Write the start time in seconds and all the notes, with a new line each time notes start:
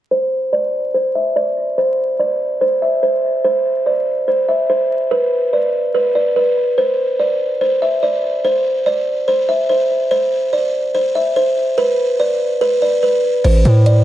0.11 C5
0.53 D5
0.94 C5
1.15 E5
1.36 D5
1.78 C5
2.19 D5
2.61 C5
2.82 E5
3.03 C5
3.44 C5
3.86 D5
4.28 C5
4.49 E5
4.70 C5
5.11 B4
5.53 D5
5.95 B4
6.15 D5
6.36 B4
6.78 C5
7.19 D5
7.61 C5
7.82 E5
8.03 D5
8.45 C5
8.86 D5
9.28 C5
9.49 E5
9.69 C5
10.11 C5
10.53 D5
10.95 C5
11.15 E5
11.36 C5
11.78 B4
12.20 D5
12.61 B4
12.82 D5
13.03 B4
13.44 A1 C5, closed hi-hat, crash
13.65 A2, closed hi-hat
13.86 D5, closed hi-hat